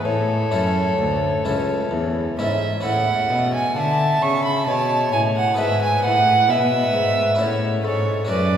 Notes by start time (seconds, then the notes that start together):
0.05 A2 A4 C#5
0.51 F#2 C#4 E4 A4
0.99 D2
1.45 C#2 C#4 E4 A4
1.91 E2
2.38 G#2 C#4 E4 A4 E5
2.80 A2 C#4 E4 A4 F#5
2.85 A2
3.30 B2
3.54 G#5
3.76 D3 E5 F5 A5
4.21 C#3 C#6
4.45 B5
4.67 B2 C#5 A5
5.12 A2 G#5
5.37 F#5
5.54 G#2 B3 E4 B4
5.58 G#2 E5
5.82 G#5
6.03 A2 F#5
6.48 B2 B4 E5
6.94 G#2
7.35 C#4 E4 A4
7.39 A2 D5
7.44 C#5
7.84 G#2 A4 C#5
8.25 F#2 C#4 F#4 A4
8.29 F#2 B4 D5